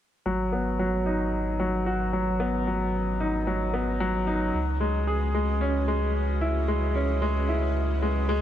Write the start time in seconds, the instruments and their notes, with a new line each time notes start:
0.25 sub bass G#1, grand piano F#3, ambient pad C#4
0.32 ambient pad F#4
0.53 grand piano B3
0.79 grand piano F#3
0.84 ambient pad B4 D#5
1.06 grand piano D#4
1.60 grand piano F#3
1.86 grand piano F#4
2.13 grand piano F#3
2.40 grand piano B3
2.67 grand piano F#3
3.20 grand piano D#4
3.47 grand piano F#3
3.74 grand piano B3
4.00 grand piano F#3
4.27 grand piano D#4
4.54 sub bass C#2
4.80 grand piano G#3
5.07 grand piano G#4
5.34 grand piano G#3
5.61 grand piano C#4
5.88 grand piano G#3
6.41 grand piano E4
6.68 grand piano G#3
6.95 grand piano C#4
7.22 grand piano G#3
7.49 grand piano E4
8.02 grand piano G#3
8.29 grand piano G#3